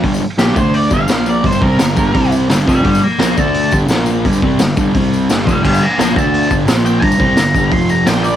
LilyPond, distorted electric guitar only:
\new Staff \with { instrumentName = "Distorted electric guitar" } { \clef bass \time 4/4 \key g \minor \tempo 4 = 172 <g, d g>8 r8 <bes, f bes>8 <d a d'>4 <g, d g>8 <bes, f bes>4 | <g, d g>8 <c g c'>8 <g, d>8 <g, d g>8 <c g c'>4 <g, d g>8 <f, c f>8 | <g, d g>8 r8 <bes, f bes>8 <d a d'>4 <g, d g>8 <bes, f bes>4 | <g, d g>8 <c g c'>8 <g, d>8 <g, d g>8 <c g c'>4 <g, d g>8 <f, c f>8 |
<g, d g>8 r8 <bes, f bes>8 <d a d'>4 <g, d g>8 <bes, f bes>4 | <g, d g>8 <c g c'>8 <g, d>8 <g, d g>8 <f, c f>4 <bes, f bes>4 | }